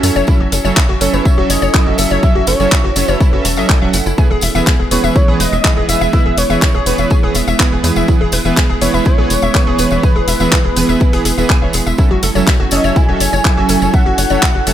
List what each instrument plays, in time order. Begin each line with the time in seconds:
Already playing: supersaw synth F#3 C#4 A4 E5, ambient pad F#3 C#4 E4 A4 G#5
0.03 analog synth bass F#2, synth arpeggio sound C#5, open hi-hat, tambourine
0.16 analog synth bass F#1, synth arpeggio sound C#5, tambourine
0.27 supersaw synth F#3 C#4 A4 E5, synth arpeggio sound E4, kick, tambourine
0.40 analog synth bass F#1, synth arpeggio sound F#4
0.52 analog synth bass F#1, synth arpeggio sound A4, open hi-hat, tambourine
0.65 analog synth bass F#1, supersaw synth F#3 C#4 A4 E5, synth arpeggio sound C#5, tambourine
0.77 synth arpeggio sound E4, kick, clap, tambourine
0.89 analog synth bass F#1, synth arpeggio sound F#4
1.01 analog synth bass F#1, supersaw synth F#3 C#4 A4 E5, synth arpeggio sound A4, analog synth lead C#5, open hi-hat, tambourine
1.13 analog synth bass F#1, analog synth lead B4, synth arpeggio sound C#5, tambourine
1.25 analog synth lead C#5, synth arpeggio sound E5, kick, tambourine
1.38 analog synth bass E1, supersaw synth F#3 C#4 A4 E5, synth arpeggio sound F#4
1.50 analog synth bass F#1, synth arpeggio sound C#5, analog synth lead D#5, open hi-hat, tambourine
1.62 analog synth bass F#1, synth arpeggio sound C#5, tambourine
1.74 supersaw synth F#3 C#4 A4 E5, synth arpeggio sound E4, kick, clap, tambourine
1.86 analog synth bass F#1, synth arpeggio sound F#4
1.98 analog synth bass F#1, synth arpeggio sound A4, analog synth lead E5, open hi-hat, tambourine
2.10 analog synth bass F#1, synth arpeggio sound C#5, tambourine
2.23 supersaw synth F#3 C#4 A4 E5, synth arpeggio sound E4, analog synth lead E5, kick, tambourine
2.35 analog synth bass F#1, synth arpeggio sound F#4
2.47 analog synth bass F#1, synth arpeggio sound A4, analog synth lead C#5, open hi-hat, tambourine
2.60 analog synth bass F#1, supersaw synth F#3 C#4 A4 E5, synth arpeggio sound C#5, tambourine
2.72 synth arpeggio sound E5, kick, clap, tambourine
2.84 analog synth bass F#1, synth arpeggio sound F#4
2.96 analog synth bass F#1, supersaw synth F#3 C#4 A4 E5, synth arpeggio sound C#5, open hi-hat, tambourine
3.08 analog synth bass F#1, synth arpeggio sound C#5, tambourine
3.13 analog synth lead B4
3.21 synth arpeggio sound E4, kick, tambourine
3.33 analog synth bass F#1, supersaw synth F#3 C#4 A4 E5, synth arpeggio sound F#4
3.45 analog synth bass E1, synth arpeggio sound A5, open hi-hat, tambourine
3.56 analog synth bass F#1, supersaw synth F#3 C#4 A4 D#5, synth arpeggio sound E5, tambourine
3.69 synth arpeggio sound A4, kick, clap, tambourine
3.82 analog synth bass E1, supersaw synth F#3 C#4 A4 F#5, synth arpeggio sound E5
3.93 analog synth bass F#1, synth arpeggio sound F#5, open hi-hat, tambourine
4.06 analog synth bass F#1, synth arpeggio sound E4, tambourine
4.18 supersaw synth E3 B3 G#4 B4, ambient pad G#3 B3, synth arpeggio sound G#5, kick, tambourine
4.30 analog synth bass E1, synth arpeggio sound G#4
4.41 analog synth bass E1, synth arpeggio sound E5, open hi-hat, tambourine
4.55 analog synth bass E1, supersaw synth E3 B3 G#4 B4, synth arpeggio sound E5, tambourine
4.67 synth arpeggio sound E4, kick, clap, tambourine
4.79 analog synth bass E1, synth arpeggio sound G#4
4.91 analog synth bass E1, supersaw synth E3 B3 G#4 B4, synth arpeggio sound B4, analog synth lead C#5, open hi-hat, tambourine
5.03 analog synth bass E1, analog synth lead B4, synth arpeggio sound E5, tambourine
5.16 synth arpeggio sound E4, analog synth lead C#5, kick, tambourine
5.28 analog synth bass B1, supersaw synth E3 B3 G#4 B4, synth arpeggio sound G#4
5.40 analog synth bass E1, synth arpeggio sound B4, analog synth lead D#5, open hi-hat, tambourine
5.52 analog synth bass E1, synth arpeggio sound E5, tambourine
5.64 supersaw synth E3 B3 G#4 B4, synth arpeggio sound G#5, kick, clap, tambourine
5.77 analog synth bass E1, synth arpeggio sound G#4
5.89 analog synth bass E1, analog synth lead E5, synth arpeggio sound E5, open hi-hat, tambourine
6.01 analog synth bass E1, synth arpeggio sound E5, tambourine
6.13 supersaw synth E3 B3 G#4 B4, synth arpeggio sound E4, analog synth lead E5, kick, tambourine
6.25 analog synth bass E1, synth arpeggio sound G#4
6.37 analog synth bass E1, synth arpeggio sound B4, analog synth lead C#5, open hi-hat, tambourine
6.50 analog synth bass E1, supersaw synth E3 B3 G#4 B4, synth arpeggio sound E5, tambourine
6.62 synth arpeggio sound E4, kick, clap, tambourine
6.74 analog synth bass E1, synth arpeggio sound G#4
6.86 analog synth bass E1, supersaw synth E3 B3 G#4 B4, synth arpeggio sound B4, open hi-hat, tambourine
6.98 analog synth bass E1, synth arpeggio sound E5, tambourine
7.10 synth arpeggio sound G#5, kick, tambourine
7.23 analog synth bass E1, supersaw synth E3 B3 G#4 B4, synth arpeggio sound G#4
7.35 analog synth bass E1, synth arpeggio sound E5, open hi-hat, tambourine
7.47 analog synth bass E1, synth arpeggio sound E5, tambourine
7.60 supersaw synth E3 B3 G#4 B4, synth arpeggio sound E4, kick, clap, tambourine
7.72 analog synth bass E1, synth arpeggio sound G#4
7.84 analog synth bass E2, synth arpeggio sound B4, open hi-hat, tambourine
7.96 analog synth bass E1, synth arpeggio sound E5, tambourine
8.08 supersaw synth E3 B3 G#4 B4, synth arpeggio sound E4, kick, tambourine
8.20 analog synth bass E1, synth arpeggio sound G#4
8.32 analog synth bass E1, synth arpeggio sound B4, open hi-hat, tambourine
8.45 analog synth bass E1, supersaw synth E3 B3 G#4 B4, synth arpeggio sound E5, tambourine
8.57 synth arpeggio sound G#5, kick, clap, tambourine
8.69 analog synth bass E1, synth arpeggio sound G#4
8.81 analog synth bass E1, supersaw synth E3 B3 G#4 B4, analog synth lead C#5, synth arpeggio sound E5, open hi-hat, tambourine
8.94 analog synth bass E1, analog synth lead B4, synth arpeggio sound E5, tambourine
9.05 synth arpeggio sound E4, analog synth lead C#5, kick, tambourine
9.18 analog synth bass B1, supersaw synth E3 B3 G#4 B4, synth arpeggio sound G#4
9.30 analog synth bass E1, synth arpeggio sound B4, open hi-hat, tambourine
9.42 analog synth bass E1, synth arpeggio sound E5, tambourine
9.54 supersaw synth E3 B3 G#4 B4, synth arpeggio sound E4, kick, clap, tambourine
9.67 analog synth bass E1, synth arpeggio sound G#4
9.79 analog synth bass E1, synth arpeggio sound B4, open hi-hat, tambourine
9.91 analog synth bass E1, synth arpeggio sound E5, tambourine
10.03 supersaw synth E3 B3 G#4 B4, analog synth lead B4, synth arpeggio sound G#5, kick, tambourine
10.16 analog synth bass E1, synth arpeggio sound G#4
10.28 analog synth bass E1, synth arpeggio sound E5, open hi-hat, tambourine
10.40 analog synth bass E1, supersaw synth E3 B3 G#4 B4, synth arpeggio sound E5, tambourine
10.52 synth arpeggio sound E4, kick, clap
10.64 analog synth bass E1, synth arpeggio sound G#4
10.76 analog synth bass E1, supersaw synth E3 B3 G#4 B4, synth arpeggio sound B4, open hi-hat, tambourine
10.89 analog synth bass E1, synth arpeggio sound E5, tambourine
11.00 synth arpeggio sound E4, kick, tambourine
11.13 analog synth bass E1, supersaw synth E3 B3 G#4 B4, synth arpeggio sound G#4, open hi-hat
11.25 analog synth bass E1, synth arpeggio sound G#4, open hi-hat, tambourine
11.38 analog synth bass E1, supersaw synth E3 B3 G#4 B4, synth arpeggio sound E5, tambourine
11.49 synth arpeggio sound G#5, kick, clap, tambourine
11.62 analog synth bass E1, supersaw synth E3 B3 G#4 C#5, synth arpeggio sound E5
11.73 analog synth bass E1, synth arpeggio sound G#4, open hi-hat, tambourine
11.86 analog synth bass E1, synth arpeggio sound E5, tambourine
11.98 ambient pad F#3 C#4 E4 A4 G#5, supersaw synth F#3 C#4 A4 E5, synth arpeggio sound E4, kick, tambourine
12.11 analog synth bass F#1, synth arpeggio sound F#4
12.23 analog synth bass F#1, synth arpeggio sound A4, open hi-hat, tambourine
12.35 analog synth bass F#1, supersaw synth F#3 C#4 A4 E5, synth arpeggio sound C#5, tambourine
12.47 synth arpeggio sound E5, kick, clap, tambourine
12.60 analog synth bass F#1, synth arpeggio sound F#4
12.71 analog synth bass F#1, supersaw synth F#3 C#4 A4 E5, synth arpeggio sound C#5, analog synth lead D#5, open hi-hat, tambourine
12.84 analog synth bass F#1, synth arpeggio sound C#5, analog synth lead E5, tambourine
12.96 synth arpeggio sound E4, analog synth lead G#5, kick, tambourine
13.08 analog synth bass E1, supersaw synth F#3 C#4 A4 E5, synth arpeggio sound F#4
13.20 analog synth bass F#1, synth arpeggio sound C#5, open hi-hat, tambourine
13.33 analog synth bass F#1, synth arpeggio sound C#5, tambourine
13.45 supersaw synth F#3 C#4 A4 E5, synth arpeggio sound E4, kick, clap, tambourine
13.57 analog synth bass F#1, synth arpeggio sound F#4
13.69 analog synth bass F#1, synth arpeggio sound A4, open hi-hat, tambourine
13.82 analog synth bass F#1, synth arpeggio sound C#5, tambourine
13.94 supersaw synth F#3 C#4 A4 E5, synth arpeggio sound E5, analog synth lead F#5, kick, tambourine
14.06 analog synth bass F#1, synth arpeggio sound F#4
14.18 analog synth bass F#1, synth arpeggio sound C#5, open hi-hat, tambourine
14.30 analog synth bass F#1, supersaw synth F#3 C#4 A4 E5, synth arpeggio sound C#5, tambourine
14.42 synth arpeggio sound E4, kick, clap, tambourine
14.55 analog synth bass F#1, synth arpeggio sound F#4
14.67 analog synth bass F#1, supersaw synth F#3 C#4 A4 E5, synth arpeggio sound C#5, open hi-hat, tambourine